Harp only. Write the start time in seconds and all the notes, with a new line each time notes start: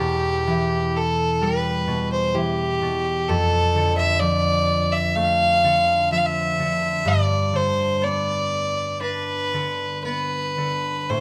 Already playing: E2 E4
0.00 B2
0.47 E3
1.41 G3
1.87 B2
2.35 E3
2.82 B2
3.29 F2
3.75 D3
4.21 F3
5.16 A3
5.64 D3
6.12 F3
6.59 D3
7.05 G2
7.53 D3
8.02 B3
9.00 D4
9.54 D3
10.05 B3
10.57 D3
11.09 A2